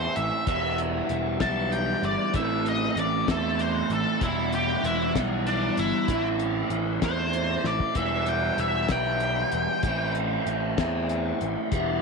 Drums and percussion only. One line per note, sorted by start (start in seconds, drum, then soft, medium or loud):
0.16 closed hi-hat medium
0.47 kick loud
0.47 closed hi-hat medium
0.78 closed hi-hat medium
1.09 closed hi-hat medium
1.40 kick medium
1.40 snare medium
1.40 closed hi-hat medium
1.72 closed hi-hat medium
2.03 closed hi-hat medium
2.34 kick loud
2.34 closed hi-hat medium
2.66 closed hi-hat medium
2.97 closed hi-hat medium
3.28 kick medium
3.28 snare loud
3.28 closed hi-hat medium
3.59 closed hi-hat medium
3.90 closed hi-hat medium
4.21 kick loud
4.21 closed hi-hat medium
4.52 closed hi-hat medium
4.84 closed hi-hat medium
5.15 kick medium
5.15 snare medium
5.15 closed hi-hat medium
5.47 closed hi-hat medium
5.77 closed hi-hat medium
6.08 kick loud
6.08 closed hi-hat loud
6.39 closed hi-hat medium
6.70 closed hi-hat medium
7.02 kick medium
7.02 snare loud
7.02 closed hi-hat medium
7.33 closed hi-hat medium
7.64 snare medium
7.80 kick medium
7.95 kick loud
7.95 closed hi-hat loud
8.26 closed hi-hat medium
8.58 closed hi-hat medium
8.89 kick medium
8.89 snare medium
8.89 closed hi-hat medium
9.20 closed hi-hat medium
9.52 closed hi-hat medium
9.83 kick loud
9.83 closed hi-hat medium
10.15 closed hi-hat medium
10.47 closed hi-hat medium
10.78 kick medium
10.78 snare loud
10.78 closed hi-hat medium
11.09 closed hi-hat medium
11.41 closed hi-hat medium
11.72 kick loud
11.72 closed hi-hat medium